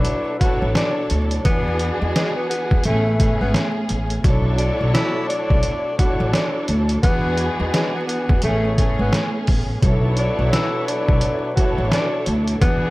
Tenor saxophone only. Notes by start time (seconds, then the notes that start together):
Already playing: D4
0.39 F#4
0.76 D4
1.45 B3
2.01 G#3
2.15 G#3
2.36 B3
2.49 B3
2.85 A3
3.41 B3
4.57 D4
4.94 E4
5.29 D4
5.99 F#4
6.34 D4
7.03 B3
7.60 G#3
7.74 G#3
7.95 B3
8.07 B3
8.44 A3
9.00 B3
10.18 D4
10.52 E4
10.87 D4
11.56 F#4
11.93 D4
12.61 B3